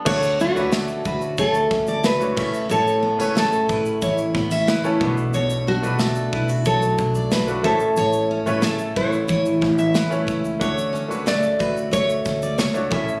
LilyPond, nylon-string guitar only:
\new Staff \with { instrumentName = "Nylon-string guitar" } { \time 4/4 \key d \lydian \tempo 4 = 91 r8 fis'4. a'4 b'4 | a'4 a'4. r4. | r8 fis'4 r8 a'4 b'8 a'8~ | a'4. cis''2 r8 |
r4 d''4 cis''4 cis''4 | }